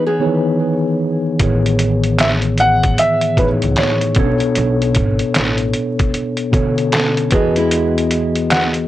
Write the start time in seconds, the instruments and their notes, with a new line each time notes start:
Already playing: tine electric piano E3 B3 D#4 G#4 C#5
0.06 nylon-string guitar B3 G#4
0.19 tine electric piano D#3 B3 D#4 G#4 C#5
0.26 tine electric piano E3
1.39 upright bass A1, tine electric piano A2 D#3 E3 B3 G#4, kick, closed hi-hat
1.44 tine electric piano C#5
1.66 closed hi-hat
1.79 closed hi-hat
2.04 closed hi-hat
2.19 felt piano E5, snare, clap, closed hi-hat
2.42 closed hi-hat
2.58 felt piano F#5, closed hi-hat
2.83 kick, closed hi-hat
2.98 felt piano E5, closed hi-hat
3.21 closed hi-hat
3.37 tine electric piano A2 E3 B3 D#4 G#4, felt piano B4, kick, closed hi-hat
3.41 tine electric piano C#5
3.62 upright bass C#2, closed hi-hat
3.76 felt piano C#5, snare, clap, closed hi-hat
4.01 closed hi-hat
4.15 upright bass B1, tine electric piano B2 B3 C#4 A4, kick, closed hi-hat
4.19 tine electric piano C#5
4.24 tine electric piano D4
4.40 closed hi-hat
4.55 upright bass B1, closed hi-hat
4.82 closed hi-hat
4.95 upright bass G#1, kick, closed hi-hat
5.19 closed hi-hat
5.35 upright bass A1, snare, clap, closed hi-hat
5.58 closed hi-hat
5.73 closed hi-hat
5.99 kick, closed hi-hat
6.14 closed hi-hat
6.37 closed hi-hat
6.52 tine electric piano B2 D3 B3 A4 C#5, kick, closed hi-hat
6.78 closed hi-hat
6.92 nylon-string guitar C#4 A4, snare, clap, closed hi-hat
7.17 closed hi-hat
7.31 upright bass E2, tine electric piano E3 B3 F#4 G#4, nylon-string guitar B3 G#4, kick, closed hi-hat
7.35 tine electric piano D#5
7.56 nylon-string guitar G#3 E4, closed hi-hat
7.71 closed hi-hat
7.98 closed hi-hat
8.11 closed hi-hat
8.36 closed hi-hat
8.51 felt piano F#5, snare, clap, closed hi-hat
8.74 closed hi-hat